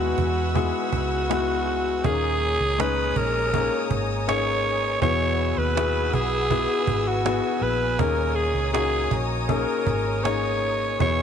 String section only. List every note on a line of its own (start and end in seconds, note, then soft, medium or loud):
0.00 2.01 B4 medium
0.00 2.01 F#5 medium
0.00 2.01 G#5 medium
0.00 2.01 E6 medium
2.04 4.99 C#5 medium
2.04 11.22 G#5 medium
2.04 4.99 A#5 medium
2.04 4.99 D#6 medium
5.00 7.95 B4 medium
5.00 7.96 F#5 medium
5.00 7.96 E6 medium
7.98 10.97 C#5 medium
7.98 10.97 A#5 medium
7.98 10.97 D#6 medium
11.00 11.22 B4 medium
11.00 11.22 F#5 medium
11.00 11.22 E6 medium